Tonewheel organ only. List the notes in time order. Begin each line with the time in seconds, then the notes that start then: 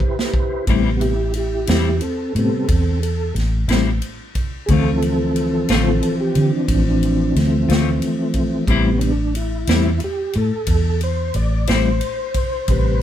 Already playing: E4 G4 B4 C5
0.70 C3 G3 B3
0.97 E4 F#4
1.01 G4
1.36 E4 G4
1.70 E4 G4
2.02 C4 A4
2.36 C3 G3 B3 C4 A4
2.69 C4 A4
3.03 A4
4.66 E3 C4 G#4
4.70 F3 A4
6.21 G4
6.52 D4
6.89 D4
7.37 A3
8.66 C3 G3 B3
8.98 C#4 D4
9.36 E4
10.04 G4
10.38 A4
11.03 C5
11.36 D5
11.68 C5
12.70 C3 G3 B4